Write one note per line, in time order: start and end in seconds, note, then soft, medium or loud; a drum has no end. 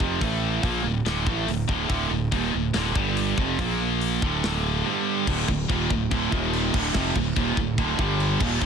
0.00 0.20 F1 medium
0.00 0.20 F2 medium
0.00 0.21 C3 medium
0.00 0.21 F3 medium
0.00 kick medium
0.21 0.61 A1 medium
0.21 0.63 A2 medium
0.21 0.63 E3 medium
0.21 0.63 A3 medium
0.21 kick loud
0.21 open hi-hat soft
0.63 0.83 A#1 medium
0.63 0.84 A#2 medium
0.63 0.84 F3 medium
0.63 0.85 A#3 medium
0.63 kick medium
0.63 open hi-hat soft
0.84 1.04 D1 medium
0.84 1.02 D2 medium
0.84 1.02 A2 medium
1.05 1.25 D1 medium
1.05 1.26 D2 medium
1.05 1.25 A2 medium
1.05 1.26 D3 medium
1.05 snare medium
1.05 open hi-hat soft
1.26 1.46 A1 medium
1.26 1.47 A2 medium
1.26 1.47 E3 medium
1.26 1.48 A3 loud
1.26 kick medium
1.48 1.68 D1 medium
1.48 1.65 D2 medium
1.48 1.65 A2 medium
1.48 open hi-hat soft
1.68 1.89 D1 medium
1.68 1.88 D2 medium
1.68 1.89 A2 medium
1.68 1.90 D3 medium
1.68 kick medium
1.89 2.10 D1 medium
1.89 2.09 D2 medium
1.89 2.10 A2 medium
1.89 2.11 D3 medium
1.89 kick medium
1.89 open hi-hat soft
2.10 2.31 D1 medium
2.10 2.28 D2 medium
2.10 2.28 A2 medium
2.32 2.52 D#1 medium
2.32 2.52 D#2 medium
2.32 2.53 A#2 medium
2.32 2.53 D#3 medium
2.32 kick medium
2.32 open hi-hat soft
2.52 2.74 D1 medium
2.52 2.70 D2 medium
2.52 2.70 A2 medium
2.73 2.95 D1 loud
2.73 2.96 D2 medium
2.73 2.96 A2 medium
2.73 2.96 D3 loud
2.73 snare medium
2.73 open hi-hat soft
2.96 3.35 G1 medium
2.96 3.37 G2 medium
2.96 3.37 D3 medium
2.96 3.38 G3 loud
2.96 kick medium
3.17 open hi-hat medium
3.38 3.57 F1 loud
3.38 3.58 F2 medium
3.38 3.58 C3 medium
3.38 3.59 F3 medium
3.38 kick loud
3.59 4.18 A#1 medium
3.59 4.22 A#2 medium
3.59 4.22 F3 medium
3.59 4.22 A#3 loud
3.59 kick medium
3.59 open hi-hat soft
4.01 open hi-hat soft
4.22 4.81 D1 medium
4.22 4.84 D2 medium
4.22 4.85 A2 medium
4.22 4.84 D3 medium
4.22 kick loud
4.44 snare loud
4.44 open hi-hat soft
4.84 5.26 G2 loud
4.84 5.26 D3 medium
4.84 5.27 G3 loud
5.27 5.47 D1 loud
5.27 5.47 D2 loud
5.27 5.47 A2 loud
5.27 5.48 D3 loud
5.27 kick loud
5.27 crash loud
5.27 china medium
5.48 5.68 D1 medium
5.48 5.65 D2 medium
5.48 5.65 A2 medium
5.48 kick loud
5.68 5.89 D#1 medium
5.68 5.89 D#2 loud
5.68 5.89 A#2 loud
5.68 5.90 D#3 loud
5.68 kick loud
5.68 china medium
5.90 6.10 D1 medium
5.90 6.07 D2 medium
5.90 6.07 A2 medium
5.90 kick loud
6.11 6.31 D1 medium
6.11 6.31 D2 loud
6.11 6.31 A2 loud
6.11 6.32 D3 loud
6.11 kick loud
6.11 china medium
6.32 6.71 D#1 loud
6.32 6.73 D#2 loud
6.32 6.74 A#2 loud
6.32 6.74 D#3 loud
6.32 kick loud
6.53 china medium
6.74 6.93 D1 loud
6.74 6.95 D2 loud
6.74 6.95 A2 medium
6.74 6.95 D3 loud
6.74 kick loud
6.74 crash loud
6.94 7.15 F1 loud
6.94 7.15 F2 medium
6.94 7.15 C3 loud
6.94 7.16 F3 loud
6.94 kick loud
6.94 snare loud
6.94 china medium
7.16 7.35 D1 medium
7.16 7.33 D2 medium
7.16 7.33 A2 medium
7.16 kick loud
7.36 7.56 D#1 loud
7.36 7.56 D#2 medium
7.36 7.57 A#2 loud
7.36 7.57 D#3 loud
7.36 kick loud
7.36 china medium
7.57 7.77 D1 medium
7.57 7.74 D2 medium
7.57 7.74 A2 medium
7.57 kick loud
7.78 7.98 D1 loud
7.78 7.99 D2 loud
7.78 7.99 A2 loud
7.78 7.99 D3 loud
7.78 kick loud
7.78 china medium
7.99 8.38 G1 loud
7.99 8.40 G2 loud
7.99 8.41 D3 loud
7.99 8.41 G3 loud
7.99 kick loud
8.20 china medium
8.40 8.60 D#1 loud
8.40 8.60 D#2 loud
8.40 8.61 A#2 loud
8.40 8.61 D#3 loud
8.40 kick loud
8.40 crash loud
8.60 8.66 D1 loud
8.60 8.66 D2 loud
8.60 8.66 A2 loud
8.60 8.66 D3 loud
8.60 kick loud
8.60 china medium